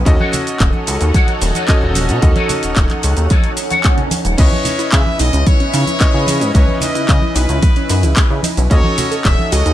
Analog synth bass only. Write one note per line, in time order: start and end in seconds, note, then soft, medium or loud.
0.06 0.17 D#2 loud
0.60 0.71 D#1 loud
0.88 0.98 C#2 loud
1.01 1.11 D#2 medium
1.42 1.52 D#1 loud
1.82 2.11 D#1 medium
2.09 2.20 B2 medium
2.23 2.33 D#2 loud
2.63 2.74 D#1 soft
2.77 2.87 D#1 loud
3.04 3.14 C#2 loud
3.17 3.27 D#2 medium
4.25 4.35 D#1 medium
4.39 4.49 C#2 loud
4.93 5.03 C#3 loud
5.20 5.30 B1 loud
5.33 5.44 C#2 medium
5.74 5.84 C#3 loud
6.14 6.42 C#3 medium
6.41 6.52 G#2 medium
6.55 6.65 C#2 loud
6.95 7.06 C#3 soft
7.08 7.19 C#3 loud
7.35 7.46 B1 loud
7.49 7.60 C#2 medium
7.90 8.05 F#2 medium
8.03 8.14 C#2 medium
8.30 8.41 C#3 medium
8.57 8.68 B1 medium
8.71 8.81 D#2 loud
9.25 9.36 D#1 loud
9.52 9.63 C#2 loud
9.66 9.73 D#2 loud